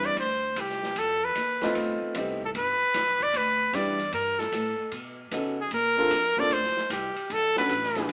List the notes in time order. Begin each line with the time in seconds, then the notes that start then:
Already playing: E2 G3 B3 C4 D4 E4
0.03 D5, ride
0.17 D2 C5, ride
0.56 C2, hi-hat pedal, ride
0.60 G4
0.70 snare
0.83 snare
0.96 F2 A4, ride
1.25 B4
1.35 D#2, hi-hat pedal, ride
1.61 A3 B3 C4 D#4 F4, snare, ride
1.75 D2, ride
2.01 muted upright bass stroke
2.15 C2 A3 B3 C4 D#4 G4, hi-hat pedal, ride
2.41 A4, kick
2.55 G1 B4, ride
2.82 muted upright bass stroke
2.94 B1, snare, hi-hat pedal, ride
3.21 D5, kick, ride
3.34 D2 B4, ride
3.73 E2 G3 B3 D4 E4 G4 D5, hi-hat pedal, ride
3.99 ride
4.12 G2 A#4, ride
4.39 A4, snare
4.52 A2, hi-hat pedal, ride
4.78 muted upright bass stroke
4.92 B2, ride
5.31 C#3 B3 C#4 D#4 F#4 A4, hi-hat pedal, ride
5.61 G#4
5.71 A#2 A#4, ride
5.97 A#3 C4 D4 F4 A4
6.10 F2, hi-hat pedal, ride
6.37 A#3 C4 D4 F4 A4 D5, muted upright bass stroke, kick
6.50 D2 C5, ride
6.64 snare
6.76 muted upright bass stroke, snare
6.90 C2 G4, hi-hat pedal, ride
7.16 muted upright bass stroke, ride
7.30 B1 A4, ride
7.56 B3 C#4 D4 F#4 A4 B4, snare
7.69 A1, hi-hat pedal, ride
7.83 snare
7.95 B3 D4 E4 G#4 B4, snare, ride
8.08 E1, ride